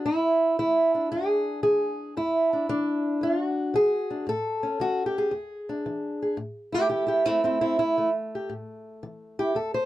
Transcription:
0.06 E2 E4
0.59 E3 E4
0.95 D4
1.12 E2 G#4
1.63 E3 G#4
2.17 E2 E4
2.53 D4
2.69 E3 D4
3.21 E2 F4
3.43 F#4
3.74 E3 G#4
4.10 D4
4.27 A2 A4
4.63 C#4
4.80 E3 F#4
5.06 G4
5.18 G#4
5.31 E2
5.69 D4
5.86 E3
6.22 G#4
6.37 A2
6.72 A3 E4 G4
6.89 E3 E4 G4
7.07 E4 G4
7.25 A3 C4 E4
7.43 E2 C4 E4
7.61 C4 E4
7.79 E4
7.98 E3 A3
8.35 G4
8.49 A2
9.03 E3
9.39 E4 G4
9.55 E2 A4
9.74 C5

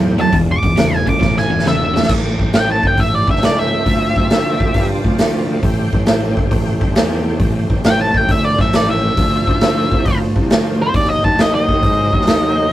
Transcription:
Already playing: E2 A2 F#3 A3 G4 C5
0.18 A2 F#3 A5, open hi-hat
0.32 E1 E2 B2 G#3 F4 D5, kick, open hi-hat
0.52 D6
0.63 E1 E2 B2, kick, open hi-hat
0.76 E1 E2 C#3, snare, open hi-hat
0.95 G#5
1.07 E1 E2 C#3 D6, kick, open hi-hat
1.19 A1 E2 B2, kick, snare
1.37 G#5, snare
1.50 E1 E2 B2
1.59 snare
1.64 E1 E2 C#3 E5, snare
1.94 E2 C#3, snare
2.03 snare
2.09 A1 A#3 G#4 C#5, kick, crash
2.23 A3 G4 C5
2.39 A1, kick
2.53 A1 G5, snare, open hi-hat
2.71 A5
2.83 G1, kick
2.87 G5
2.97 A1 E5, kick, open hi-hat
3.15 D5
3.28 G1 E5, kick
3.36 snare
3.41 C#2, snare, open hi-hat
3.45 D5
3.59 E5
3.86 D2 C4 F4 D5, kick, open hi-hat
4.16 D2, kick
4.30 D2, snare, open hi-hat
4.60 D2, kick
4.74 G2, kick, open hi-hat
5.04 D2, kick
5.18 D2, snare, open hi-hat
5.62 A1 A3 G4 C5, kick, open hi-hat
5.93 A1, kick
6.06 A1, snare, open hi-hat
6.37 G1, kick
6.51 A1, kick, open hi-hat
6.81 G1, kick
6.95 E2, snare, open hi-hat
7.40 A1, kick, open hi-hat
7.70 A1, kick
7.84 A1 G5, snare, open hi-hat
8.01 A5
8.14 A1 G5, kick
8.28 D2 E5, kick, open hi-hat
8.44 D5
8.59 A1 E5, kick, snare
8.73 A1 D5, snare, open hi-hat
8.90 E5
9.17 D2 F3 D4 C5, kick, open hi-hat
9.47 D2, kick
9.61 D2, snare, open hi-hat
9.92 C2, kick
10.05 D2, kick, open hi-hat
10.36 C2, kick
10.50 D2, snare, open hi-hat
10.82 C5
10.94 D#2 F#3 D#4 C5 D5, kick, open hi-hat
11.09 D#5
11.24 D#2 A5, kick
11.38 D#2 D#5, snare, open hi-hat
11.55 D#5
11.68 D#2, kick
11.83 G#2, kick, open hi-hat
12.13 D#2, kick
12.21 snare
12.27 D#2, snare, open hi-hat

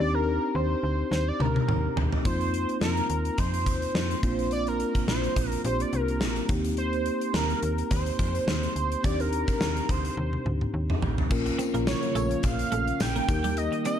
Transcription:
Already playing: C4
0.00 D#2 D4 D#4 G4 D5
0.14 A#4
0.55 D#2 C5
0.83 D2
1.11 D#2 C5, snare
1.28 D5
1.40 D2 A#4, high tom
1.56 high tom
1.68 D#2, mid tom
1.96 D#2, floor tom
2.13 floor tom
2.24 F2 A#3 C4 D#4 F4 C5, kick, closed hi-hat
2.41 closed hi-hat
2.54 closed hi-hat
2.69 closed hi-hat
2.81 F2 A#4, snare
2.97 closed hi-hat
3.10 D#2, closed hi-hat
3.25 closed hi-hat
3.38 F2 C5, kick, closed hi-hat
3.54 closed hi-hat
3.66 D#2, kick, closed hi-hat
3.82 closed hi-hat
3.95 F2, snare
4.11 closed hi-hat
4.22 A#1 A#3 C4 D4 F4, kick, closed hi-hat
4.39 closed hi-hat
4.51 D5, closed hi-hat
4.67 A#4, closed hi-hat
4.80 closed hi-hat
4.95 kick, closed hi-hat
5.08 A#1 C5, snare
5.24 closed hi-hat
5.36 A#1, kick, closed hi-hat
5.49 A#4, closed hi-hat
5.64 A#1 A#3 C4 D4 G4 C5, closed hi-hat
5.80 D5, closed hi-hat
5.93 C2 A#4, closed hi-hat
6.08 closed hi-hat
6.21 A#1, snare
6.36 closed hi-hat
6.48 D#2 A#3 C4 D#4 G4, kick, closed hi-hat
6.64 closed hi-hat
6.77 C5, closed hi-hat
6.93 closed hi-hat
7.06 closed hi-hat
7.21 closed hi-hat
7.34 D#2 A#4, snare
7.50 closed hi-hat
7.63 D#2, closed hi-hat
7.78 closed hi-hat
7.91 D#2 C5, kick, closed hi-hat
8.06 closed hi-hat
8.19 F2, kick, closed hi-hat
8.35 closed hi-hat
8.47 D#2, snare
8.63 closed hi-hat
8.76 D2, closed hi-hat
8.92 closed hi-hat
9.03 D#2 C4 D4 D#4 G4 D5, kick, closed hi-hat
9.20 A#4, closed hi-hat
9.33 closed hi-hat
9.48 kick, closed hi-hat
9.61 D#2, snare
9.77 closed hi-hat
9.89 D2 C5, kick, closed hi-hat
10.05 closed hi-hat
10.17 D#2, high tom
10.33 high tom
10.46 D2, mid tom
10.61 mid tom
10.74 D#2
10.90 mid tom
11.02 A1, floor tom
11.18 floor tom
11.29 A#1 C#3 F3 A#3 C#4 F4 A#4, kick, crash
11.46 muted clean electric guitar stroke, closed hi-hat
11.59 C4, closed hi-hat, tambourine
11.74 A#1 A#3, closed hi-hat
11.87 C#5, snare, tambourine
12.03 closed hi-hat
12.15 A#1 A3, closed hi-hat, tambourine
12.31 closed hi-hat
12.43 A#1 F5, kick, closed hi-hat, tambourine
12.59 closed hi-hat
12.72 A#1 A3, closed hi-hat
12.88 closed hi-hat
13.00 A#1 G5, snare, tambourine
13.16 A#3, closed hi-hat
13.28 D#2 D#3 G3 A#3 D#4 G4 A#4, muted clean electric guitar stroke, kick, closed hi-hat, tambourine
13.44 G3, closed hi-hat
13.57 D#5, closed hi-hat, tambourine
13.72 muted clean electric guitar stroke, closed hi-hat
13.85 C4 D#5, closed hi-hat, tambourine

